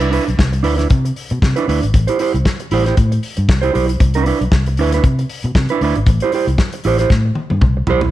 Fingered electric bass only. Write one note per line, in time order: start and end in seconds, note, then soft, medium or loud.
0.00 0.18 C2 loud
0.28 0.36 B1 medium
0.39 0.65 C2 loud
0.65 0.84 D2 loud
0.91 1.10 C3 loud
1.31 1.40 B2 loud
1.43 1.53 C3 loud
1.68 1.79 D2 medium
1.83 1.91 G#1 medium
1.94 2.05 A1 loud
2.34 2.43 C2 loud
2.72 2.91 A1 loud
2.98 3.17 A2 loud
3.38 3.46 G2 loud
3.49 3.68 C2 medium
3.75 3.94 B1 loud
4.01 4.31 C2 loud
4.41 4.50 B1 loud
4.52 4.79 C2 loud
4.79 4.98 D2 loud
5.04 5.23 C3 loud
5.44 5.53 B2 loud
5.55 5.66 C3 loud
5.81 5.92 D2 medium
5.96 6.05 G#1 medium
6.07 6.18 A1 loud
6.47 6.56 C2 loud
6.85 7.04 A1 loud
7.10 7.30 A2 loud
7.51 7.59 G2 medium
7.62 7.81 C2 medium
7.87 8.07 B1 medium